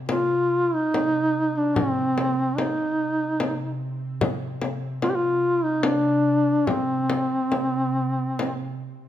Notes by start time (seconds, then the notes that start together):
Already playing: C3
0.09 F4, frame drum
0.74 D#4
0.94 frame drum
1.57 D4
1.75 C4, frame drum
2.18 frame drum
2.57 D#4, frame drum
3.40 frame drum
4.21 frame drum
4.62 frame drum
5.02 F4, frame drum
5.10 G4
5.15 F4
5.64 D#4
5.83 D4, frame drum
6.67 C4, frame drum
7.10 frame drum
7.52 frame drum
8.39 frame drum